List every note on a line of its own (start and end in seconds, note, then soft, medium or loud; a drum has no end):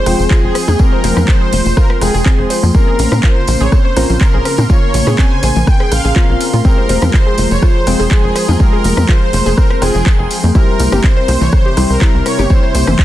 0.00 2.71 F3 medium
0.00 2.71 G#3 medium
0.00 2.71 C4 medium
0.00 0.32 C5 loud
0.00 2.71 G5 medium
0.00 13.05 C6 medium
0.06 0.15 F1 medium
0.06 0.77 G#3 medium
0.06 0.77 C4 medium
0.06 0.77 F4 medium
0.06 0.77 G#4 loud
0.06 0.77 G5 medium
0.06 cross-stick medium
0.06 open hi-hat loud
0.06 tambourine medium
0.19 0.27 F1 medium
0.19 tambourine medium
0.31 0.35 F4 loud
0.31 0.81 G#4 loud
0.31 kick loud
0.31 clap loud
0.44 0.52 F1 medium
0.55 cross-stick medium
0.55 open hi-hat medium
0.55 tambourine medium
0.68 0.76 F2 medium
0.68 0.72 G#4 loud
0.68 mid tom medium
0.68 tambourine medium
0.68 high conga medium
0.79 1.99 G#3 medium
0.79 1.99 C4 medium
0.79 0.87 C4 medium
0.79 1.99 F4 medium
0.79 1.99 G4 medium
0.79 1.99 G#4 loud
0.79 1.30 A#4 loud
0.79 kick loud
0.79 tambourine soft
0.92 0.97 C5 medium
1.04 1.13 F1 medium
1.04 1.11 C5 medium
1.04 open hi-hat loud
1.04 tambourine loud
1.04 high conga medium
1.17 1.25 F2 medium
1.17 1.23 F3 medium
1.17 cross-stick medium
1.17 mid tom medium
1.17 tambourine medium
1.28 1.78 C5 loud
1.28 kick loud
1.28 clap loud
1.28 tambourine soft
1.41 1.47 G#4 medium
1.53 1.62 F1 loud
1.53 open hi-hat loud
1.53 tambourine medium
1.53 high conga medium
1.66 1.74 F1 medium
1.66 tambourine medium
1.66 high conga medium
1.77 1.82 F4 loud
1.77 1.88 A#4 loud
1.77 kick loud
1.77 cross-stick medium
1.77 tambourine soft
1.90 cross-stick medium
2.01 2.10 F1 medium
2.01 2.72 G#3 medium
2.01 2.72 C4 medium
2.01 2.72 F4 medium
2.01 2.47 G#4 medium
2.01 2.72 G#4 loud
2.01 2.72 G5 medium
2.01 cross-stick medium
2.01 open hi-hat loud
2.01 tambourine loud
2.14 2.22 F1 medium
2.14 2.18 G#4 loud
2.14 tambourine medium
2.26 2.33 C4 medium
2.26 kick loud
2.26 clap loud
2.39 2.47 F1 medium
2.39 2.43 C5 medium
2.50 2.57 C5 medium
2.50 open hi-hat medium
2.50 tambourine loud
2.63 2.71 F2 medium
2.63 2.69 F3 medium
2.63 tambourine medium
2.63 high conga loud
2.75 6.61 C#3 medium
2.75 3.94 A#3 medium
2.75 6.61 A#3 medium
2.75 3.94 C4 medium
2.75 3.94 C#4 medium
2.75 3.94 F4 medium
2.75 3.94 A#4 loud
2.75 13.05 A#4 medium
2.75 3.25 A#4 medium
2.75 kick loud
2.75 tambourine soft
2.87 2.94 G#4 medium
2.99 3.08 A#1 medium
2.99 open hi-hat loud
2.99 tambourine loud
2.99 high conga medium
3.12 3.20 A#2 medium
3.12 cross-stick medium
3.12 mid tom medium
3.12 tambourine medium
3.23 3.28 F4 loud
3.23 3.62 C5 medium
3.23 kick loud
3.23 clap loud
3.23 tambourine soft
3.47 3.57 A#1 loud
3.47 open hi-hat loud
3.47 tambourine medium
3.47 high conga medium
3.60 3.69 A#1 medium
3.60 3.65 G#4 loud
3.60 3.73 C#5 medium
3.60 tambourine medium
3.60 high conga medium
3.72 3.79 C4 medium
3.72 4.22 C5 loud
3.72 kick loud
3.72 cross-stick medium
3.72 tambourine soft
3.85 3.89 C5 medium
3.96 4.06 A#1 loud
3.96 4.67 A#3 medium
3.96 4.67 C4 medium
3.96 4.67 C#4 medium
3.96 4.67 F4 medium
3.96 4.67 A#4 loud
3.96 4.04 C5 medium
3.96 cross-stick medium
3.96 open hi-hat loud
3.96 tambourine loud
4.09 4.18 A#1 medium
4.09 4.16 F3 medium
4.09 tambourine medium
4.21 4.66 A#4 loud
4.21 kick loud
4.21 clap loud
4.21 tambourine soft
4.34 4.42 A#1 medium
4.34 4.40 G#4 medium
4.45 cross-stick medium
4.45 open hi-hat medium
4.45 tambourine medium
4.58 4.66 A#2 medium
4.58 mid tom medium
4.58 tambourine medium
4.58 high conga medium
4.70 5.89 A#3 medium
4.70 5.89 C#4 medium
4.70 4.74 F4 loud
4.70 5.89 F4 medium
4.70 5.89 A#4 loud
4.70 5.15 C#5 loud
4.70 kick loud
4.70 tambourine soft
4.94 5.03 A#1 medium
4.94 open hi-hat loud
4.94 tambourine loud
4.94 high conga medium
5.07 5.15 A#2 medium
5.07 5.11 G#4 loud
5.07 cross-stick medium
5.07 mid tom medium
5.07 tambourine medium
5.19 5.26 C4 medium
5.19 5.69 G#5 loud
5.19 kick loud
5.19 clap loud
5.19 tambourine soft
5.31 5.36 C5 medium
5.43 5.52 A#1 loud
5.43 5.50 C5 medium
5.43 open hi-hat loud
5.43 tambourine loud
5.43 high conga medium
5.56 5.64 A#1 medium
5.56 5.62 F3 medium
5.56 tambourine medium
5.56 high conga medium
5.67 5.92 G5 loud
5.67 kick loud
5.67 cross-stick medium
5.67 tambourine soft
5.80 5.86 G#4 medium
5.80 cross-stick medium
5.91 6.01 A#1 medium
5.91 6.37 F5 loud
5.91 cross-stick medium
5.91 open hi-hat loud
5.91 tambourine loud
6.04 6.13 A#1 medium
6.04 6.09 G#4 medium
6.04 tambourine soft
6.16 6.26 A#3 loud
6.16 6.26 C4 medium
6.16 6.26 C#4 loud
6.16 6.21 F4 loud
6.16 6.26 F4 medium
6.16 6.26 A#4 loud
6.16 kick loud
6.16 clap loud
6.16 tambourine soft
6.29 6.37 A#1 medium
6.29 6.62 A#3 medium
6.29 6.62 C4 medium
6.29 6.62 C#4 medium
6.29 6.62 F4 medium
6.29 6.62 A#4 medium
6.40 6.45 F5 medium
6.40 open hi-hat loud
6.40 tambourine loud
6.53 6.61 A#2 medium
6.53 6.58 F4 medium
6.53 tambourine medium
6.53 high conga medium
6.65 10.51 F3 medium
6.65 7.84 G#3 medium
6.65 10.51 G#3 medium
6.65 6.72 C4 medium
6.65 7.84 C4 medium
6.65 7.84 F4 medium
6.65 7.84 G4 medium
6.65 7.84 G#4 loud
6.65 7.10 A#4 loud
6.65 13.05 G5 medium
6.65 kick loud
6.65 tambourine soft
6.78 6.82 C5 medium
6.89 6.98 F1 medium
6.89 6.96 C5 medium
6.89 open hi-hat loud
6.89 tambourine medium
6.89 high conga medium
7.02 7.10 F2 medium
7.02 7.08 F3 medium
7.02 cross-stick medium
7.02 mid tom medium
7.02 tambourine medium
7.14 7.48 C5 loud
7.14 kick loud
7.14 clap loud
7.14 tambourine soft
7.27 7.33 G#4 medium
7.38 7.47 F1 medium
7.38 open hi-hat medium
7.38 tambourine medium
7.38 high conga medium
7.51 7.59 F1 medium
7.51 7.62 C#5 loud
7.51 tambourine medium
7.51 high conga medium
7.62 7.67 F4 loud
7.62 8.13 C5 loud
7.62 kick loud
7.62 cross-stick medium
7.62 tambourine soft
7.87 7.96 F1 loud
7.87 8.57 G#3 loud
7.87 8.57 C4 medium
7.87 8.57 F4 medium
7.87 8.57 G#4 loud
7.87 8.57 G5 medium
7.87 cross-stick medium
7.87 open hi-hat loud
7.87 tambourine loud
7.99 8.08 F1 medium
7.99 8.04 G#4 loud
7.99 tambourine medium
8.11 8.18 C4 medium
8.11 8.61 G#4 loud
8.11 kick loud
8.11 clap loud
8.11 tambourine soft
8.24 8.32 F1 medium
8.24 8.28 C5 medium
8.36 8.43 C5 medium
8.36 cross-stick medium
8.36 open hi-hat loud
8.36 tambourine loud
8.48 8.57 F2 medium
8.48 8.55 F3 medium
8.48 mid tom loud
8.48 tambourine medium
8.48 high conga medium
8.60 9.79 G#3 medium
8.60 9.79 C4 medium
8.60 9.79 F4 medium
8.60 9.79 G4 medium
8.60 9.79 G#4 loud
8.60 9.10 A#4 loud
8.60 kick loud
8.60 tambourine soft
8.73 8.79 G#4 medium
8.84 8.93 F1 loud
8.84 open hi-hat loud
8.84 tambourine medium
8.84 high conga medium
8.97 9.05 F2 medium
8.97 cross-stick medium
8.97 mid tom medium
8.97 tambourine medium
9.09 9.13 F4 loud
9.09 9.59 C5 loud
9.09 kick loud
9.09 clap loud
9.33 9.42 F1 medium
9.33 open hi-hat medium
9.33 tambourine medium
9.33 high conga medium
9.46 9.54 F1 medium
9.46 9.50 G#4 loud
9.46 tambourine medium
9.46 high conga medium
9.58 9.65 C4 medium
9.58 9.80 A#4 loud
9.58 kick loud
9.58 cross-stick medium
9.58 tambourine soft
9.70 9.75 C5 medium
9.70 cross-stick medium
9.82 9.91 F1 medium
9.82 10.52 G#3 medium
9.82 10.52 C4 medium
9.82 10.52 F4 medium
9.82 10.52 G#4 loud
9.82 10.27 G#4 medium
9.82 9.89 C5 medium
9.82 10.52 G5 medium
9.82 cross-stick medium
9.82 open hi-hat loud
9.82 tambourine medium
9.94 10.03 F1 medium
9.94 10.01 F3 medium
9.94 tambourine soft
10.06 kick loud
10.06 clap loud
10.19 10.27 F1 medium
10.19 10.25 G#4 medium
10.30 open hi-hat medium
10.30 tambourine medium
10.43 10.52 F2 medium
10.43 tambourine medium
10.43 high conga loud
10.55 13.05 C3 medium
10.55 11.74 G3 medium
10.55 11.74 C4 medium
10.55 13.05 E4 medium
10.55 10.60 E4 loud
10.55 11.74 E4 medium
10.55 11.74 G4 medium
10.55 11.00 A#4 loud
10.55 11.74 C5 loud
10.55 kick loud
10.55 tambourine soft
10.79 10.89 C2 loud
10.79 open hi-hat loud
10.79 tambourine loud
10.79 high conga medium
10.92 11.00 G1 medium
10.92 10.97 G4 loud
10.92 cross-stick medium
10.92 mid tom medium
10.92 tambourine medium
11.03 11.11 C4 medium
11.03 11.42 C5 loud
11.03 kick loud
11.03 clap loud
11.03 tambourine soft
11.17 11.21 C5 medium
11.28 11.37 C2 loud
11.28 11.35 C5 medium
11.28 open hi-hat medium
11.28 tambourine medium
11.28 high conga medium
11.41 11.49 C2 medium
11.41 11.47 E3 medium
11.41 11.46 C#5 loud
11.41 tambourine soft
11.41 high conga medium
11.52 11.91 C5 loud
11.52 kick loud
11.52 cross-stick medium
11.52 tambourine soft
11.66 11.72 G4 medium
11.77 11.86 C2 loud
11.77 12.47 G3 medium
11.77 12.47 C4 medium
11.77 12.47 E4 medium
11.77 12.47 G4 medium
11.77 12.47 C5 loud
11.77 cross-stick medium
11.77 open hi-hat loud
11.77 tambourine medium
11.90 11.98 C2 medium
11.90 12.27 A#4 loud
11.90 tambourine soft
12.01 12.06 E4 loud
12.01 kick loud
12.01 clap loud
12.01 tambourine soft
12.14 12.22 C2 medium
12.26 12.51 C#5 loud
12.26 cross-stick medium
12.26 open hi-hat medium
12.26 tambourine medium
12.39 12.47 G1 medium
12.39 12.43 G4 loud
12.39 mid tom medium
12.39 tambourine soft
12.39 high conga medium
12.50 13.05 G3 medium
12.50 13.05 C4 medium
12.50 12.57 C4 medium
12.50 13.05 E4 medium
12.50 13.05 G4 medium
12.50 13.05 C5 loud
12.50 kick loud
12.50 tambourine soft
12.63 12.67 C5 medium
12.75 12.84 C2 loud
12.75 12.82 C5 medium
12.75 open hi-hat loud
12.75 tambourine loud
12.75 high conga medium
12.87 12.96 G1 medium
12.87 12.94 E3 medium
12.87 cross-stick medium
12.87 mid tom medium
12.87 tambourine medium
12.99 kick loud
12.99 clap loud
12.99 tambourine soft